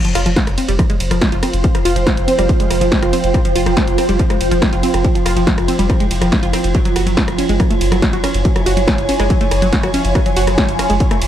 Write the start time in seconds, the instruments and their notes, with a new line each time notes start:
Already playing: synth drone F3 F4, ambient pad F4
0.05 synth arpeggio sound F3, closed hi-hat
0.10 ambient pad C5
0.15 sub bass F1, synth arpeggio sound F4, cross-stick, open hi-hat, ride
0.26 sub bass F1, synth arpeggio sound F3, closed hi-hat
0.36 synth arpeggio sound F3, kick, snare, closed hi-hat, ride
0.47 sub bass F1, cross-stick, closed hi-hat
0.58 synth arpeggio sound C4, open hi-hat, ride
0.68 sub bass F1, synth arpeggio sound G3, closed hi-hat
0.79 synth arpeggio sound F3, kick, cross-stick, closed hi-hat, ride
0.90 synth arpeggio sound G#3, closed hi-hat
0.98 sub bass F1, ambient pad G5, open hi-hat, ride
1.11 sub bass F1, synth arpeggio sound F3, cross-stick, closed hi-hat
1.21 synth arpeggio sound F3, kick, snare, closed hi-hat, ride
1.32 sub bass F1, synth arpeggio sound F4, closed hi-hat
1.43 synth arpeggio sound C4, cross-stick, open hi-hat, ride
1.53 sub bass F1, closed hi-hat
1.64 synth arpeggio sound F3, kick, closed hi-hat, ride
1.75 synth arpeggio sound F3, cross-stick, closed hi-hat
1.85 sub bass F1, synth arpeggio sound F4, open hi-hat, ride
1.96 sub bass F1, synth arpeggio sound F3, closed hi-hat
2.07 synth arpeggio sound F3, kick, cross-stick, snare, closed hi-hat, ride
2.17 sub bass F1, closed hi-hat
2.28 synth arpeggio sound C4, open hi-hat, ride
2.39 sub bass F1, synth arpeggio sound G3, cross-stick, closed hi-hat
2.49 synth arpeggio sound F3, kick, closed hi-hat, ride
2.60 synth arpeggio sound G#3, closed hi-hat
2.70 sub bass F1, cross-stick, open hi-hat, ride
2.81 sub bass F1, synth arpeggio sound F3, closed hi-hat
2.92 synth arpeggio sound F3, kick, snare, closed hi-hat, ride
3.02 sub bass F1, synth arpeggio sound F4, cross-stick, closed hi-hat
3.13 synth arpeggio sound C4, open hi-hat, ride
3.24 sub bass F1, closed hi-hat
3.34 synth arpeggio sound F3, kick, cross-stick, closed hi-hat, ride
3.45 synth arpeggio sound F3, closed hi-hat
3.56 sub bass F1, synth arpeggio sound F4, open hi-hat, ride
3.66 sub bass F1, synth arpeggio sound F3, cross-stick, closed hi-hat
3.77 synth arpeggio sound F3, kick, snare, closed hi-hat, ride
3.88 sub bass F1, closed hi-hat
3.98 synth arpeggio sound C4, cross-stick, open hi-hat, ride
4.09 sub bass F1, synth arpeggio sound G3, closed hi-hat
4.19 synth arpeggio sound F3, kick, closed hi-hat, ride
4.30 synth arpeggio sound G#3, cross-stick, closed hi-hat
4.41 sub bass F1, open hi-hat, ride
4.51 sub bass F1, synth arpeggio sound F3, closed hi-hat
4.62 synth arpeggio sound F3, kick, cross-stick, snare, closed hi-hat, ride
4.73 sub bass F1, synth arpeggio sound F4, closed hi-hat
4.83 synth arpeggio sound C4, open hi-hat, ride
4.94 sub bass F1, cross-stick, closed hi-hat
5.04 synth arpeggio sound F3, kick, closed hi-hat, ride
5.15 synth arpeggio sound F3, closed hi-hat
5.26 sub bass F1, synth arpeggio sound F4, cross-stick, open hi-hat, ride
5.36 sub bass F1, synth arpeggio sound F3, closed hi-hat
5.47 synth arpeggio sound F3, kick, snare, closed hi-hat, ride
5.58 sub bass F1, cross-stick, closed hi-hat
5.68 synth arpeggio sound C4, open hi-hat, ride
5.79 sub bass F1, synth arpeggio sound G3, closed hi-hat
5.89 synth arpeggio sound F3, kick, cross-stick, closed hi-hat, ride
6.00 synth arpeggio sound G#3, closed hi-hat
6.11 sub bass F1, open hi-hat, ride
6.21 sub bass F1, synth arpeggio sound F3, cross-stick, closed hi-hat
6.32 synth arpeggio sound F3, kick, snare, closed hi-hat, ride
6.43 sub bass F1, synth arpeggio sound F4, closed hi-hat
6.53 synth arpeggio sound C4, cross-stick, open hi-hat, ride
6.64 sub bass F1, closed hi-hat
6.75 synth arpeggio sound F#3, kick, closed hi-hat, ride
6.85 synth arpeggio sound F#3, closed hi-hat
6.96 sub bass F#1, synth arpeggio sound F#4, ambient pad G#5, cross-stick, open hi-hat, ride
7.01 ambient pad C#5
7.07 sub bass F#1, synth arpeggio sound F#3, closed hi-hat
7.17 synth arpeggio sound F#3, kick, snare, closed hi-hat, ride
7.28 sub bass F#1, cross-stick, closed hi-hat
7.38 synth arpeggio sound C#4, open hi-hat, ride
7.49 sub bass F#1, synth arpeggio sound G#3, closed hi-hat
7.60 synth arpeggio sound F#3, kick, cross-stick, closed hi-hat, ride
7.70 synth arpeggio sound A3, closed hi-hat
7.81 sub bass F#1, open hi-hat, ride
7.92 sub bass F#1, synth arpeggio sound F#3, cross-stick, closed hi-hat
8.02 synth arpeggio sound F#3, kick, snare, closed hi-hat, ride
8.13 sub bass F#1, synth arpeggio sound F#4, closed hi-hat
8.24 synth arpeggio sound C#4, cross-stick, open hi-hat, ride
8.34 sub bass F#1, closed hi-hat
8.45 synth arpeggio sound F#3, kick, closed hi-hat, ride
8.56 synth arpeggio sound F#3, cross-stick, closed hi-hat
8.66 sub bass F#1, synth arpeggio sound F#4, open hi-hat, ride
8.77 sub bass F#1, synth arpeggio sound F#3, closed hi-hat
8.87 synth arpeggio sound F#3, kick, cross-stick, snare, closed hi-hat, ride
8.98 sub bass F#1, closed hi-hat
9.09 synth arpeggio sound C#4, open hi-hat, ride
9.20 sub bass F#1, synth arpeggio sound G#3, cross-stick, closed hi-hat
9.30 synth arpeggio sound F#3, kick, closed hi-hat, ride
9.41 synth arpeggio sound A3, closed hi-hat
9.51 sub bass F#1, cross-stick, open hi-hat, ride
9.62 sub bass F#1, synth arpeggio sound F#3, closed hi-hat
9.73 synth arpeggio sound F#3, kick, snare, closed hi-hat, ride
9.83 sub bass F#1, synth arpeggio sound F#4, cross-stick, closed hi-hat
9.94 synth arpeggio sound C#4, open hi-hat, ride
10.05 sub bass F#1, closed hi-hat
10.15 synth arpeggio sound F#3, kick, cross-stick, closed hi-hat, ride
10.26 synth arpeggio sound F#3, closed hi-hat
10.36 sub bass F#1, synth arpeggio sound F#4, open hi-hat, ride
10.47 sub bass F#1, synth arpeggio sound F#3, cross-stick, closed hi-hat
10.58 synth arpeggio sound F#3, kick, snare, closed hi-hat, ride
10.69 sub bass F#1, closed hi-hat
10.79 synth arpeggio sound C#4, cross-stick, open hi-hat, ride
10.90 sub bass F#1, synth arpeggio sound G#3, closed hi-hat
11.00 synth arpeggio sound F#3, kick, closed hi-hat, ride
11.11 synth arpeggio sound A3, cross-stick, closed hi-hat
11.22 sub bass F#1, open hi-hat, ride